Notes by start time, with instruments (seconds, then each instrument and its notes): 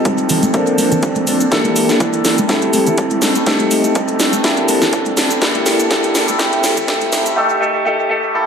Already playing: grand piano D#4 F4 G4 A4
0.05 fingered electric bass F2, clean electric guitar G3 C4 D#4 A4, kick, closed hi-hat, high conga, cabasa, shaker
0.18 closed hi-hat, shaker
0.29 clean electric guitar G3 C4 D#4 A4, open hi-hat, low conga, cabasa, shaker
0.43 closed hi-hat, high conga, cabasa, shaker
0.53 fingered electric bass A#1, clean electric guitar F3 C4 D4 A4, grand piano A#3 C4 D4 A4, kick, closed hi-hat, cabasa, shaker
0.67 closed hi-hat
0.78 fingered electric bass A#2, clean electric guitar F3 C4 D4 A4, open hi-hat, high conga, cabasa, shaker
0.91 clean electric guitar C4 D4 A4, closed hi-hat, low conga, cabasa, shaker
1.02 fingered electric bass A#1, clean electric guitar F3 C4 D4 A4, kick, closed hi-hat, cabasa, shaker
1.16 closed hi-hat, high conga, shaker
1.27 fingered electric bass A#2, clean electric guitar F3 C4 D4 A4, open hi-hat, cabasa, shaker
1.40 clean electric guitar C4 D4 A4, closed hi-hat, cabasa, shaker
1.51 clean electric guitar E3 A#3 D4 A4, grand piano A#3 E4 G4 A4, kick, snare, closed hi-hat, cabasa, shaker
1.64 closed hi-hat, high conga
1.76 fingered electric bass G2, open hi-hat, cabasa, shaker
1.89 clean electric guitar A#3 D4 A4, snare, closed hi-hat, cabasa
2.00 clean electric guitar E3 A#3 D4 A4, kick, closed hi-hat, high conga, cabasa, shaker
2.14 closed hi-hat, shaker
2.24 fingered electric bass G2, clean electric guitar E3 A#3 D4 A4, snare, open hi-hat, cabasa, shaker
2.38 clean electric guitar A#3 D4 A4, closed hi-hat, high conga, cabasa, shaker
2.48 clean electric guitar G3 C4 E4 A4, grand piano A3 E4 G4 A4, kick, snare, closed hi-hat, cabasa, shaker
2.62 closed hi-hat
2.73 fingered electric bass A2, clean electric guitar G3 C4 E4 A4, open hi-hat, high conga, cabasa, shaker
2.86 clean electric guitar C4 E4 A4, closed hi-hat, low conga, cabasa, shaker
2.98 fingered electric bass A1, clean electric guitar G3 C4 E4 A4, kick, closed hi-hat, cabasa, shaker
3.11 closed hi-hat, high conga, shaker
3.22 clean electric guitar G3 C4 D#4 A4, snare, open hi-hat, cabasa, shaker
3.35 clean electric guitar C4 D#4 A4, closed hi-hat, cabasa, shaker
3.46 clean electric guitar G3 C4 D#4 A4, grand piano A3 D#4 G4 A4, kick, snare, closed hi-hat, cabasa
3.60 closed hi-hat, high conga
3.70 fingered electric bass F1, open hi-hat, cabasa, shaker
3.84 clean electric guitar C4 D#4 A4, closed hi-hat, cabasa, shaker
3.95 clean electric guitar G3 C4 D#4 A4, kick, closed hi-hat, high conga, cabasa, shaker
4.08 closed hi-hat, shaker
4.19 fingered electric bass F1, clean electric guitar G3 C4 D#4 A4, snare, open hi-hat, cabasa, shaker
4.33 clean electric guitar C4 D#4 A4, closed hi-hat, high conga, cabasa, shaker
4.44 clean electric guitar F3 C4 D4 A4, grand piano A#3 E4 G4 A4, kick, snare, closed hi-hat, cabasa, shaker
4.57 closed hi-hat
4.68 fingered electric bass A#2, clean electric guitar F3 C4 D4 A4, open hi-hat, high conga, cabasa, shaker
4.81 clean electric guitar C4 D4 A4, snare, closed hi-hat, low conga, cabasa, shaker
4.93 clean electric guitar F3 C4 D4 A4, kick, closed hi-hat, cabasa, shaker
5.06 closed hi-hat, high conga, shaker
5.17 fingered electric bass A#2, clean electric guitar F3 C4 D4 A4, snare, open hi-hat, cabasa, shaker
5.30 clean electric guitar C4 D4 A4, closed hi-hat, cabasa, shaker
5.41 clean electric guitar E3 A#3 D4 A4, grand piano A#3 E4 G4 A4, kick, snare, closed hi-hat, cabasa, shaker
5.55 closed hi-hat, high conga
5.66 fingered electric bass G2, snare, open hi-hat, cabasa, shaker
5.79 clean electric guitar A#3 D4 A4, closed hi-hat, cabasa, shaker
5.90 clean electric guitar E3 A#3 D4 A4, grand piano A#3 E4 G4 A4, kick, snare, closed hi-hat, high conga, cabasa, shaker
6.04 closed hi-hat, shaker
6.14 fingered electric bass G2, clean electric guitar E3 A#3 D4 A4, snare, open hi-hat, cabasa, shaker
6.28 clean electric guitar A#3 D4 A4, closed hi-hat, high conga, cabasa, shaker
6.39 clean electric guitar E3 A3 C4 G4, grand piano A3 E4 G4 A4, kick, snare, closed hi-hat, cabasa, shaker
6.53 closed hi-hat
6.63 fingered electric bass A2, clean electric guitar E3 A3 C4 G4, snare, open hi-hat, high conga, cabasa, shaker
6.77 clean electric guitar A3 C4 G4, closed hi-hat, low conga, cabasa, shaker
6.87 clean electric guitar E3 A3 C4 G4, grand piano A3 E4 G4 A4, kick, snare, closed hi-hat, cabasa, shaker
7.01 closed hi-hat, high conga, shaker
7.12 clean electric guitar D#3 A3 C4 G4, snare, open hi-hat, cabasa, shaker
7.25 clean electric guitar A3 C4 G4, closed hi-hat, cabasa, shaker
7.36 grand piano A3 D#4 G4 A4
7.60 grand piano A3 D#4 G4 A4
7.85 grand piano A3 D#4 G4 A4
8.09 grand piano A3 D#4 G4 A4
8.34 grand piano A#3 E4 G4 A4